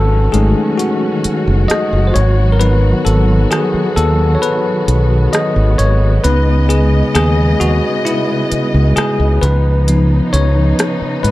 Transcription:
Already playing: G#1 D#3 F#3 C#4 F#4 A4 B4
0.32 G#1 G#3 A3 D#4 G#4, closed hi-hat
0.78 F#4, closed hi-hat
1.24 muted fingered electric bass stroke, closed hi-hat
1.47 F#1
1.68 D#5, cross-stick, closed hi-hat
1.93 F#1
2.07 C5
2.14 G#1 B3 C#5, closed hi-hat
2.52 A#4
2.60 F#3 B3 D#4 B4, closed hi-hat
3.05 G#1 A4, closed hi-hat
3.51 G#4, cross-stick, closed hi-hat
3.74 muted fingered electric bass stroke
3.96 D#2 A4, closed hi-hat
4.35 C#5
4.42 B4, closed hi-hat
4.88 B1, closed hi-hat
5.33 D#5, cross-stick, closed hi-hat
5.56 G#1
5.78 G#1 C#5, closed hi-hat
6.24 C#2 C#3 G#3 B3 D#4 B4 D#5, closed hi-hat
6.69 G#4, closed hi-hat
7.15 D#2 G#4, cross-stick, closed hi-hat
7.60 D#2 F#4, closed hi-hat
8.05 E4, closed hi-hat
8.52 muted fingered electric bass stroke, closed hi-hat
8.74 C#2
8.96 G#4, muted fingered electric bass stroke, cross-stick, closed hi-hat
9.20 C#2
9.41 C#2 C#3 F3 D#4 B4, closed hi-hat
9.88 F3 B3 D#4, closed hi-hat
10.33 C#2 C#5, closed hi-hat
10.79 cross-stick, closed hi-hat
11.02 muted fingered electric bass stroke
11.23 G#2 B4, closed hi-hat

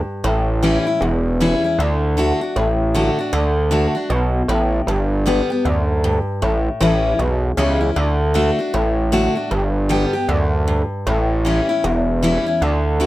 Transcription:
Already playing: G2
0.24 A1 A2
0.62 E3 G3 C#4 E4
0.87 C#4 E4
1.01 E1 E2
1.40 E3 G3 C#4 E4
1.64 C#4 E4
1.79 D2 D3
2.17 D3 A3 D4 F#4
2.41 D4 F#4
2.56 A1 A2
2.94 D3 A3 D4 F#4
3.19 D4 F#4
3.33 D2 D3
3.71 D3 A3 D4 F#4
3.95 D4 F#4
4.10 B1 B2
4.48 A1 A2
4.87 G1 G2
5.26 D3 G3 B3 G4
5.50 B3 G4
5.65 D2 F#2
6.04 G2
6.42 A1 A2
6.80 A1 E3 G3 C#4 E4
7.19 B1 E2
7.57 C#2 E3 G3 C#4 E4
7.81 C#4 E4
7.96 D2 D3
8.34 D3 A3 D4 F#4
8.59 D4 F#4
8.74 A1 A2
9.12 D3 A3 D4 F#4
9.35 D4 F#4
9.51 G1 G2
9.89 D3 G3 B3 G4
10.13 B3 G4
10.29 D2 F#2
10.68 G2
11.07 A1 A2
11.45 E3 G3 C#4 E4
11.69 C#4 E4
11.84 E1 E2
12.23 E3 G3 C#4 E4
12.46 C#4 E4
12.61 D2 D3
13.00 D3 A3 D4 F#4

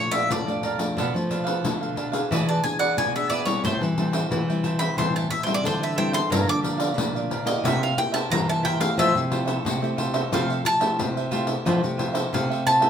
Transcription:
Already playing: A#2 F3 A3 D4 C#5
0.11 D5 E5 F5 A5, pandeiro
0.30 F2 A2 D5, pandeiro
0.47 F3 A3 D4 D5 F5 A5, pandeiro
0.63 A#4 D5 F5 A5, pandeiro
0.78 F3 A3 D4 D5 F5 A5, pandeiro
0.97 B2 D4 A4 B4 F5, pandeiro
1.15 F3 A3 D4, muted cavaquinho stroke, pandeiro
1.29 D4 A4 B4 F5, pandeiro
1.44 A4 B4 F5, pandeiro
1.64 B2 D3 F3 A3 D4, pandeiro
1.81 A4 B4 F5, pandeiro
1.96 D4 A4 B4 F5, pandeiro
2.12 B3 D4 G#4 A4 B4 F5, pandeiro
2.31 E3 E4 G#4 B4 D5, pandeiro
2.48 G#4 B4 D5 A5, pandeiro
2.64 B3 D4 G#4 G#5, muted cavaquinho stroke, pandeiro
2.79 G#4 B4 D5 F#5, pandeiro
2.97 B2 G#5, pandeiro
3.15 B3 D4 G#4 B4 D5 E5, pandeiro
3.30 E4 G#4 B4 D5, pandeiro
3.46 G3 C4 E4 G#4 B4 C#5 D5, pandeiro
3.65 A2 A4 C5 E5 G5, pandeiro
3.81 E3 G3 C4 E4, muted cavaquinho stroke, pandeiro
3.98 G3 C4 E4 A4 C5 E5 G5, pandeiro
4.13 C5 E5 G5, pandeiro
4.32 E3, pandeiro
4.49 G3 C4 E4 C5 E5 G5, pandeiro
4.63 A4 C5 E5 G5, pandeiro
4.79 C5 E5 G5 B5, pandeiro
4.97 A2 E3 G3 C4 E4 A4 C5 E5 G5 C6, pandeiro
5.15 C5 E5 G5 A5, pandeiro
5.30 E5, muted cavaquinho stroke, pandeiro
5.43 G3 C4 E4 C5 E5 G5, pandeiro
5.48 C5
5.54 D5
5.63 D3 E3 C5, pandeiro
5.81 C5 E5 G5, pandeiro
5.96 G3 C4 E4 A4 C5 E5 G5, pandeiro
6.12 C5 E5 G5 C6, pandeiro
6.30 G2 F3 A#3 D4 G4 A#4 D5 F5 A#5, pandeiro
6.47 D3 D6, muted cavaquinho stroke, pandeiro
6.62 F3 A#3 D4 G4 A#4 D5 F5, pandeiro
6.77 A#4 D5 F5, pandeiro
6.97 A#2 D3 F3 A#3 D4, pandeiro
7.15 A#4 D5 F5, pandeiro
7.30 G4 A#4 D5 F5, pandeiro
7.45 A#3 E4 G4 A#4 D5 D#5 F5, pandeiro
7.64 C3 E4 A#4 C5 E5, pandeiro
7.83 A#4 C5 E5 F5, pandeiro
7.97 A#3 E4 G4 G5, muted cavaquinho stroke, pandeiro
8.12 A#4 C5 E5 A5, pandeiro
8.30 G2 E3 A#3 E4 G4 A#5, pandeiro
8.49 A#4 C5 E5 A5, pandeiro
8.63 E4 A#4 C5 E5 G5, pandeiro
8.79 A3 E4 G4 A#4 C5 E5 F5, pandeiro
8.98 F3 F4 A4 C5 E5, pandeiro
9.15 C3, pandeiro
9.31 A3 E4 F4 G4 A4 C5 E5, pandeiro
9.45 A4 C5 E5, pandeiro
9.65 C3, pandeiro
9.82 A3 E4 G4 A4 C5 E5, pandeiro
9.97 F4 A4 C5 E5, pandeiro
10.14 A4 C5 E5, pandeiro
10.31 C3 F3 A3 F4 G4 A4 C5 E5 F5, pandeiro
10.50 A4 C5 E5, pandeiro
10.64 A5, muted cavaquinho stroke, pandeiro
10.80 A3 E4 G4 A4 C5 E5, pandeiro
10.99 C3, pandeiro
11.17 A4 C5 E5, pandeiro
11.31 A3 E4 F4 G4 A4 C5 E5, pandeiro
11.47 A4 C5 E5, pandeiro
11.65 F3 F4 A4 C5 E5, pandeiro
11.83 C3 A3 E4 G4, muted cavaquinho stroke, pandeiro
11.97 F4 A4 C5 E5, pandeiro
12.13 A4 C5 E5, pandeiro
12.33 C3 A3 G4 F5, pandeiro
12.49 A4 C5 E5, pandeiro
12.65 F4 A4 C5 E5 A5, pandeiro
12.80 A3 E4 G4 A4 C5 E5, pandeiro

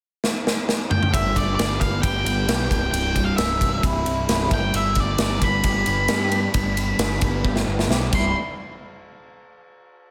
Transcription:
0.24 snare
0.47 snare
0.69 snare
0.91 G5, mid tom
1.03 mid tom
1.14 G1 G2 E5, kick, ride
1.36 G1 D3 D5, kick, ride
1.55 G1 G3 D5, ride
1.60 snare
1.80 G1 B3 F5, kick, ride
2.02 G1 G4 G5, kick, ride
2.25 G1 B3, ride
2.47 B1 G4, snare, ride
2.70 C1 C2, kick, ride
2.91 C1 C2 G5, ride
3.16 G2, kick, ride
3.25 F5
3.37 C1 G2 E5, snare, ride
3.61 C1 C3, kick, ride
3.83 C1 E4, kick, ride
4.05 C1 C3, ride
4.29 C1 E4, snare, ride
4.51 G1 G2 G5, kick, ride
4.74 G1 G2 E5, ride
4.95 G1 D3, kick, ride
5.00 D5
5.18 G1 G3, snare, ride
5.22 D5
5.41 G1 B3 B5, kick, ride
5.63 G1 G4, kick, ride
5.86 G1 B3, ride
6.08 G2 G4, snare, ride
6.32 D4, ride
6.54 G1 G2, kick, ride
6.77 D3, ride
6.98 G1 G3, snare, ride
7.21 G1 B3, kick, ride
7.44 G1 G4, kick
7.56 snare
7.67 G1 B3
7.79 snare
7.88 B1 G4, snare
8.12 C1 C2 G2 C3 G3 E4 C6, kick, crash

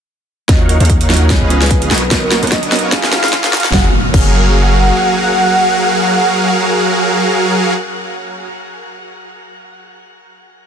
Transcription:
0.48 D#2 F3 A#3 C#4 D#4 F#4 A#4 C#5 D#5 F5 F#5, kick, snare, closed hi-hat, riser
0.69 D#5, closed hi-hat
0.79 D#2 F3 A#3 C#4 D#4 G#4 A#4 C#5 F5 F#5, closed hi-hat
0.85 closed hi-hat
0.90 kick, closed hi-hat
1.01 closed hi-hat
1.09 F3 A#3 C#4 D#4 F#4, snare, closed hi-hat
1.14 closed hi-hat
1.17 closed hi-hat
1.29 F3 B3 C#4 D#4 G#4 C#5, kick, snare, closed hi-hat
1.41 C#2 C#4 G#4 B4 D#5 F5
1.49 F3 B3 C#4 D#4 G#4, closed hi-hat
1.62 B4, snare, closed hi-hat
1.66 closed hi-hat
1.71 kick, closed hi-hat
1.81 F3 B3 C#4 D#4 G#4, closed hi-hat
1.91 B1 B3 F#4 A#4 B4 C#5 D#5, snare, closed hi-hat
1.95 closed hi-hat
1.98 closed hi-hat
2.10 B1 F#3 B3 C#4 D#4 F#4 A#4 C#5 D#5, kick, snare, closed hi-hat
2.22 A#4
2.31 snare, closed hi-hat
2.42 B1 F#3 B3 C#4 D#4 F#4 A#4 B4 C#5 D#5, closed hi-hat
2.47 closed hi-hat
2.52 D#5, kick, snare, closed hi-hat
2.63 closed hi-hat
2.71 F#3 B3 C#4 D#4 A#4, snare, closed hi-hat
2.76 closed hi-hat
2.79 closed hi-hat
2.83 F5
2.91 F#3 A#3 C#4 F4 G#4, kick, snare, closed hi-hat
3.03 F#1 F#3 F#4 G#4 A#4 F5, snare
3.12 F#3 A#3 C#4 F4 G#4, snare, closed hi-hat
3.24 snare, closed hi-hat
3.28 closed hi-hat
3.33 kick, snare, closed hi-hat
3.43 F#3 A#3 C#4 F4 G#4, snare, closed hi-hat
3.53 F#1 F#3 F#4 G#4 A#4 F5, snare, closed hi-hat
3.57 closed hi-hat
3.60 closed hi-hat
3.64 snare
3.70 F#1 F#3 A#3 C#4 F#4 G#4 A#4 F5 F#5, kick, snare, impact
3.75 G#4 F5
4.11 F#1 F#3 A#3 C#4 F#4 G#4 A#4 F5 F#5, kick, crash
4.15 G#4 C#5

